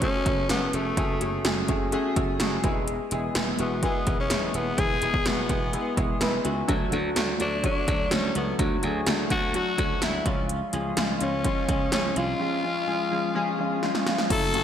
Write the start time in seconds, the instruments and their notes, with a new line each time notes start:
Already playing: grand piano C#4 F#4 G#4 B4
0.00 grand piano A3 C#4 F#4 G#4, tenor saxophone C#4, kick, closed hi-hat
0.25 slap bass F#1, grand piano A3 C#4 F#4 G#4, kick, closed hi-hat
0.49 slap bass F#1, grand piano A3 C#4 F#4 A4, tenor saxophone B3, snare, closed hi-hat
0.73 slap bass F1, grand piano A3 C#4 F#4 G#4, tenor saxophone A3, closed hi-hat
0.97 slap bass F#1, grand piano A3 C#4 F#4 G#4, kick, closed hi-hat
1.20 slap bass F#1, grand piano A3 C#4 F#4 G#4, closed hi-hat
1.44 slap bass F#1, grand piano A3 C#4 F#4 G#4, snare, closed hi-hat
1.68 slap bass F#1, grand piano A3 C#4 F#4 G#4, kick, closed hi-hat
1.92 grand piano A3 C#4 F#4 G#4, closed hi-hat
2.16 slap bass F#1, grand piano A3 C#4 F#4 A4, kick, closed hi-hat
2.40 slap bass F#1, grand piano A3 C#4 F#4 G#4, snare, closed hi-hat
2.64 slap bass E1, grand piano G#3 B3 E4 G#4, kick, closed hi-hat
2.88 closed hi-hat
3.11 slap bass E1, grand piano G#3 B3 E4 G#4, closed hi-hat
3.35 slap bass E1, grand piano G#3 B3 E4 G#4, snare, closed hi-hat
3.58 slap bass E1, grand piano G#3 B3 E4 F#4, tenor saxophone B3, closed hi-hat
3.82 grand piano G#3 B3 E4 G#4, tenor saxophone B3, kick, closed hi-hat
4.06 slap bass E1, grand piano G#3 B3 E4 G#4, kick, closed hi-hat
4.20 tenor saxophone C#4
4.30 slap bass E1, grand piano G#3 B3 E4 G#4, snare, closed hi-hat
4.54 slap bass D#1, grand piano G#3 B3 E4 G#4, tenor saxophone B3, closed hi-hat
4.77 slap bass E1, grand piano G#3 B3 E4 G#4, tenor saxophone G#4, kick, closed hi-hat
5.01 slap bass E1, grand piano G#3 B3 E4 G#4, closed hi-hat
5.14 kick
5.25 slap bass E1, grand piano G#3 B3 E4 F#4, tenor saxophone B3, snare, closed hi-hat
5.49 slap bass E1, grand piano G#3 B3 E4 G#4, kick, closed hi-hat
5.73 grand piano G#3 B3 E4 G#4, closed hi-hat
5.96 slap bass E1, grand piano G#3 B3 E4 G#4, kick, closed hi-hat
6.20 slap bass E1, grand piano G#3 B3 E4 B4, snare, closed hi-hat
6.44 slap bass C#2, grand piano G#3 B3 E4 F#4, closed hi-hat
6.68 slap bass D2, grand piano F#3 A3 D4 F#4, kick, closed hi-hat
6.92 slap bass D2, grand piano F#3 A3 D4 F#4, closed hi-hat
7.16 slap bass D2, grand piano F#3 A3 D4 F#4, snare, closed hi-hat
7.39 slap bass D2, grand piano F#3 A3 D4 F#4, tenor saxophone D4, closed hi-hat
7.63 grand piano F#3 A3 D4 F#4, tenor saxophone D4, kick, closed hi-hat
7.87 slap bass D2, grand piano F#3 A3 D4 F#4, kick, closed hi-hat
8.11 slap bass D2, grand piano F#3 A3 D4 F#4, tenor saxophone C#4, snare, closed hi-hat
8.35 slap bass C#2, grand piano F#3 A3 D4 F#4, tenor saxophone B3, closed hi-hat
8.58 slap bass D2, grand piano F#3 A3 D4 F#4, kick, closed hi-hat
8.82 slap bass D2, grand piano F#3 A3 D4 G#4, closed hi-hat
9.06 slap bass D2, grand piano F#3 A3 D4 F#4, snare, closed hi-hat
9.30 slap bass D2, grand piano F#3 A3 D4 A4, tenor saxophone F#4, kick, closed hi-hat
9.54 grand piano F#3 A3 D4 F#4, tenor saxophone F#4, closed hi-hat
9.78 slap bass D2, grand piano F#3 A3 D4 F#4, kick, closed hi-hat
10.01 slap bass D2, grand piano F#3 A3 D4 E4, tenor saxophone E4, snare, closed hi-hat
10.25 slap bass C#2, grand piano F3 G#3 C#4 F4, tenor saxophone C#4, kick, closed hi-hat
10.49 closed hi-hat
10.73 slap bass C#2, grand piano F3 G#3 C#4 G#4, closed hi-hat
10.96 slap bass C#2, grand piano F3 G#3 C#4 F4, snare, closed hi-hat
11.20 slap bass C#2, grand piano F3 G#3 C#4 F4, tenor saxophone C#4, closed hi-hat
11.44 grand piano F3 G#3 C#4 F4, kick, closed hi-hat
11.68 slap bass C#2, grand piano F3 G#3 C#4 G#4, kick, closed hi-hat
11.92 slap bass C#2, grand piano F3 G#3 C#4 G#4, tenor saxophone C#4, snare, closed hi-hat
12.16 slap bass C2, grand piano F3 G#3 C#4 F4, tenor saxophone F4, closed hi-hat
12.39 grand piano F3 G#3 C#4 F4
12.63 grand piano F3 G#3 C#4 F4
12.87 grand piano F3 G#3 C#4 G#4
13.11 grand piano F3 G#3 C#4 G#4
13.35 grand piano F3 G#3 C#4 G#4
13.58 grand piano F3 G#3 C#4 F4
13.82 grand piano F3 G#3 C#4 F4, snare
13.95 snare
14.06 grand piano F3 G#3 C#4 F4, snare
14.18 snare
14.30 slap bass F#1, grand piano F#3 A3 C#4 E4, tenor saxophone A4, kick, closed hi-hat, crash
14.54 grand piano F#3 A3 C#4 F#4, closed hi-hat